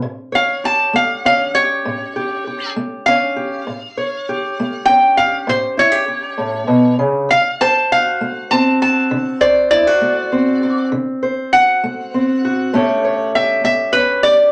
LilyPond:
<<
  \new Staff \with { instrumentName = "Resonator guitar played with a steel bar" } { \time 12/8 \key a \dorian \tempo 4. = 66 r8 f''8 a''8 f''8 f''8 cis''2 r8 f''4~ | f''2 g''8 f''8 c''8 cis''2 r8 | f''8 a''8 f''4 a''8 a''4 d''8 d''2 | r4 fis''2. e''8 e''8 b'8 d''8 | }
  \new Staff \with { instrumentName = "Steel-string acoustic guitar" } { \time 12/8 \key a \dorian << { r8 cis''8 g'4 cis'8 g'4 g'8 g'4 cis'8 g'8 | r8 cis''8 g'4 cis'8 g'4 e'16 g'16 g'2 | r8 c''8 fis'4 c'8 fis'4 c''8 e'16 fis'8. c'8 fis'8 | r8 c''8 fis'4 c'8 fis'8 <a cis' g' cis''>8 cis''8 g'4 cis'8 g'8 | } \\ { a,4 r8 a4 r8 a,4 r8 a4 r8 | a,4 r8 a4 r8 a,4 r8 a,8 b,8 cis8 | d4 r8 a4 r8 d4 r8 a4 r8 | d4 r8 a4 r8 a,4 r8 a4 r8 | } >> }
>>